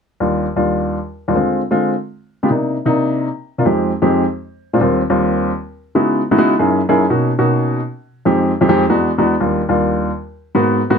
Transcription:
0.20 D#2 G3 D4 F4
0.56 D#2 G3 D4 F4
1.28 D#2 G3 D4 F4
1.35 D3 G#3 C4 F4
1.71 D3 G#3 C4 F4
2.43 C#3 G#3 B3 F4 G4
2.50 C3 A#3 D4 D#4
2.86 C3 A#3 D4 D#4
3.58 C3 A#3 D4 F4
3.66 F2 G#3 C4 D#4 G4
4.02 F2 G#3 C4 D#4 G4
4.73 A#2 G#3 C4 D4 F4
4.81 D#2 G3 A#3 C4 F4
5.10 D#2 G3 A#3 C4 F4
5.95 C#3 G#3 B3 D#4 E4 F#4
6.31 C#3 G#3 B3 D#4 E4 F#4
6.38 C#3 G#3 B3 D#4 E4 F#4
6.59 F#2 A#3 C#4 D#4 E4 G#4
6.89 F#2 A#3 C#4 D#4 E4 G#4
7.10 B2 A#3 C#4 D#4 F#4
7.38 B2 A#3 C#4 D#4 F#4
8.25 F2 G#3 C4 D#4 G4
8.61 F2 G#3 C4 D#4 G4
8.69 F2 G#3 C4 D#4 G4
8.90 E2 G#3 B3 D4 F#4
9.18 E2 G#3 B3 D4 F#4
9.40 D#2 G3 A#3 D4 F4
9.69 D#2 G3 A#3 D4 F4
10.55 G#2 A#3 B3 F#4
10.90 G#2 A#3 B3 F#4

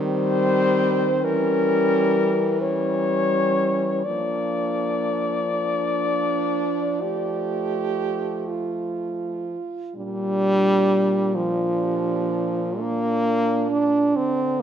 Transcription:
Already playing: D#3 G3 C4 C5
1.22 E3 G3 C#4 A#4
2.60 G3 C#4 C#5
4.05 F3 A#3 D4 D5
5.53 D4
7.02 A3 G4
8.48 F4
9.95 A#2 G3 D4
11.35 F3 D4 F4
11.84 G4
12.32 F4
12.78 A#3 D4
13.70 D4
14.16 D3 C4

